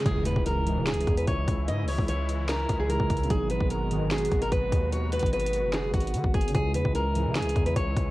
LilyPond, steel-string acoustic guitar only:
\new Staff \with { instrumentName = "Steel-string acoustic guitar" } { \time 4/4 \key cis \dorian \tempo 4 = 148 gis'8 b'8 ais'4 gis'8. b'16 cis''4 | dis''8 cis''8 cis''4 ais'8. gis'16 ais'4 | gis'8 b'8 ais'4 gis'8. ais'16 b'4 | cis''8 b'8 b'4 gis'8 fis'4 gis'8 |
gis'8 b'8 ais'4 gis'8. b'16 cis''4 | }